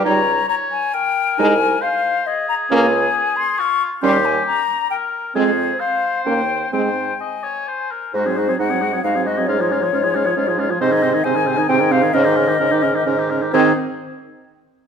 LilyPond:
<<
  \new Staff \with { instrumentName = "Flute" } { \time 3/4 \key aes \major \tempo 4 = 135 bes''4 bes''8 aes''8 g''4 | aes''4 f''4 ees''8 bes''8 | aes''4. c'''8 des'''4 | c'''8 aes''8 bes''4 g''8 r8 |
c''4 f''4 g''4 | g''4 aes''4. r8 | c''4 ges''4 f''8 ees''8 | des''2. |
ees''4 aes''4 g''8 f''8 | ees''2. | c''8 r2 r8 | }
  \new Staff \with { instrumentName = "Oboe" } { \time 3/4 \key aes \major des''4 des''4 bes'4~ | bes'4 c''4 aes'4~ | aes'2 f'4 | g'4. r8 bes'4 |
aes'4 c''2 | c''4 ees''8 des''8 c''8 bes'8 | ges'16 aes'16 ges'16 aes'16 ges'16 aes'16 ges'16 aes'16 ges'16 aes'16 ges'16 aes'16 | f'16 aes'16 f'16 aes'16 f'16 aes'16 f'16 aes'16 f'16 aes'16 f'16 aes'16 |
c''16 aes'16 c''16 aes'16 c''16 aes'16 c''16 aes'16 c''16 aes'16 c''16 aes'16 | bes'16 g'16 bes'16 g'16 bes'16 g'16 bes'16 g'16 bes'16 g'16 bes'16 g'16 | aes'8 r2 r8 | }
  \new Staff \with { instrumentName = "Clarinet" } { \time 3/4 \key aes \major ees'8 r2 r8 | ees'8 r2 r8 | des'8 r2 r8 | des'8 r2 r8 |
c'8 r4. des'8 r8 | c'8 r2 r8 | ees'16 c'16 ees'16 c'16 ees'16 c'16 ees'16 c'16 ees'16 c'16 ees'16 c'16 | des'16 f'16 des'16 f'16 des'16 f'16 des'16 f'16 des'16 f'16 des'16 f'16 |
c'16 ees'16 c'16 ees'16 c'16 ees'16 c'16 ees'16 c'16 ees'16 c'16 ees'16 | des'16 ees'16 des'16 ees'16 des'16 ees'16 des'16 ees'16 des'16 ees'16 des'16 ees'16 | c'8 r2 r8 | }
  \new Staff \with { instrumentName = "French horn" } { \clef bass \time 3/4 \key aes \major g8 r2 r8 | aes8 r2 r8 | bes8 r2 r8 | g8 r2 r8 |
aes8 r4. bes8 r8 | aes8 r2 r8 | aes16 ges16 aes16 ges16 aes16 ges16 aes16 ges16 aes16 ges16 aes16 ges16 | aes16 f16 aes16 f16 aes16 f16 aes16 f16 aes16 f16 aes16 f16 |
c16 ees16 c16 ees16 c16 ees16 c16 ees16 c16 ees16 c16 ees16 | des16 ees16 des16 ees16 des16 ees16 des16 ees16 des16 ees16 des16 ees16 | ees8 r2 r8 | }
  \new Staff \with { instrumentName = "Bassoon" } { \clef bass \time 3/4 \key aes \major des,4 r2 | c,4 r2 | des,4 r2 | ees,4 r2 |
f,4 r4 ees,4 | aes,4 r2 | aes,4 aes,4 aes,4 | aes,4 aes,4 aes,4 |
aes,4 aes,4 aes,4 | aes,4 aes,4 aes,4 | aes,8 r2 r8 | }
>>